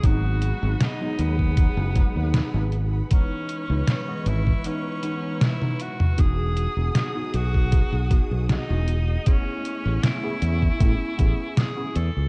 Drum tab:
HH |x-x-x-x-x-x-x-x-|x-x-x-x-x-x-x-x-|x-x-x-x-x-x-x-x-|x-x-x-x-x-x-x-x-|
SD |----o-------o---|----o-------o---|----o-------o---|----o-------o---|
T1 |----------------|------------oo--|----------------|----------------|
T2 |----------------|---------------o|----------------|----------------|
BD |o------oo-o-----|o------o--------|o------oo-o-----|o------oo-o-----|